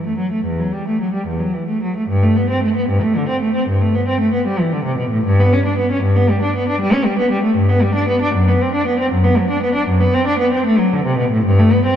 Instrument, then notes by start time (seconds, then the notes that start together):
cello
0.06 A3
0.18 F#3
0.32 A3
0.45 E2
0.60 F#3
0.74 G3
0.88 A3
1.01 F#3
1.13 G3
1.27 E2
1.40 F#3
1.54 E3
1.68 A3
1.83 F#3
1.96 A3
2.08 G2
2.23 A3
2.36 B3
2.50 C4
2.63 A3
2.76 B3
2.89 G2
3.02 A3
3.16 D3
3.28 C4
3.42 A3
3.55 C4
3.68 G2
3.81 A3
3.94 B3
4.08 C4
4.20 A3
4.33 B3
4.47 G3
4.60 E3
4.73 D3
4.85 C3
4.98 B2
5.11 A2
5.25 G2
5.40 B3
5.53 C#4
5.66 D4
5.78 B3
5.91 C#4
6.03 G2
6.17 B3
6.30 G3
6.42 D4
6.56 B3
6.68 D4
6.81 G3
6.93 C#4
7.05 G3
7.19 B3
7.32 G3
7.43 A3
7.56 G2
7.70 B3
7.82 G3
7.95 D4
8.09 B3
8.21 D4
8.35 F#2
8.49 B3
8.62 C4
8.74 D4
8.87 B3
8.99 C4
9.12 F#2
9.25 B3
9.38 F#3
9.50 D4
9.63 B3
9.75 D4
9.88 F#2
10.01 B3
10.14 C4
10.27 D4
10.39 B3
10.53 C4
10.66 A3
10.79 F#3
10.93 D3
11.05 C3
11.18 B2
11.31 A2
11.45 G2
11.59 A3
11.72 B3
11.85 C4